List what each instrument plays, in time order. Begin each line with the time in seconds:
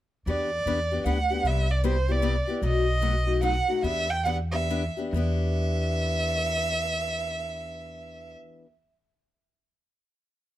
0.26 upright bass E2, steel-string acoustic guitar E3 B3 D4 G4, violin D5
0.66 upright bass E2, steel-string acoustic guitar E3 B3 D4 G4
0.91 steel-string acoustic guitar B3 D4 G4
1.05 upright bass D2, steel-string acoustic guitar E3 B3 D4 G4, violin F#5
1.30 steel-string acoustic guitar B3 D4 G4
1.44 upright bass C2, steel-string acoustic guitar C3 G3 B3 E4 G4, violin E5
1.71 violin D5
1.84 steel-string acoustic guitar C3 G3 B3 E4 G4, violin C5
2.08 steel-string acoustic guitar B3 E4 G4, violin D5
2.22 steel-string acoustic guitar C3 G3 B3 E4 G4
2.47 steel-string acoustic guitar B3 E4 G4
2.62 upright bass B1, steel-string acoustic guitar B2 F#3 A3 D#4 F#4, violin D#5
3.01 steel-string acoustic guitar B2 F#3 A3 D#4 F#4
3.26 steel-string acoustic guitar A3 D#4 F#4
3.42 steel-string acoustic guitar B2 F#3 A3 D#4 F#4, violin F#5
3.68 steel-string acoustic guitar A3 D#4 F#4
3.83 upright bass E2, steel-string acoustic guitar E3 B3 D4 G4, violin E5
4.10 violin G5
4.24 steel-string acoustic guitar E3 B3 D4 G4, violin F#5
4.51 steel-string acoustic guitar B3 D4 G4, violin E5
4.70 steel-string acoustic guitar E3 B3 D4 G4
4.97 steel-string acoustic guitar B3 D4 G4
5.13 upright bass E2, steel-string acoustic guitar E3 B3 D4, violin E5
5.17 steel-string acoustic guitar G4